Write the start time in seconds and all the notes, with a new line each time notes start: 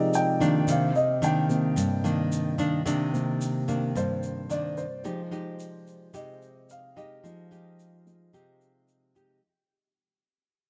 Already playing: C3 F3 G#3 D#4 G4 D5 D#5
0.14 G5, shaker
0.41 D#3 A#3 D4, shaker
0.68 C3 F5, shaker
0.95 D#5, shaker
1.22 D#3 A#3 D4 G5, shaker
1.49 C3 A#3, shaker
1.76 G2, shaker
2.04 D#3 A#3 D4, shaker
2.32 shaker
2.58 D#3 A#3 D4, shaker
2.86 C3 D#3 A#3 D4, shaker
3.13 C3 A#3, shaker
3.41 shaker
3.68 D#3 A#3 D4, shaker
3.95 G2 C5, shaker
4.23 shaker
4.50 D#3 A#3 D4 D5, shaker
4.77 C5, shaker
5.03 F3 G#3 D#4 G4, shaker
5.31 G#3 D#4 G4, shaker
5.60 shaker
5.87 shaker
6.14 C3 G#3 D#4 G4 D#5, shaker
6.42 shaker
6.70 F5, shaker
6.96 G#3 D#4 G4 D#5, shaker
7.23 F3 G#3 D#4, shaker
7.51 G#3 D#4 G4, shaker
7.79 shaker
8.05 F3 G#3 D#4, shaker
8.33 C3 G#3 D#4 G4, shaker
8.61 shaker
8.88 shaker
9.15 G#3 D#4 G4, shaker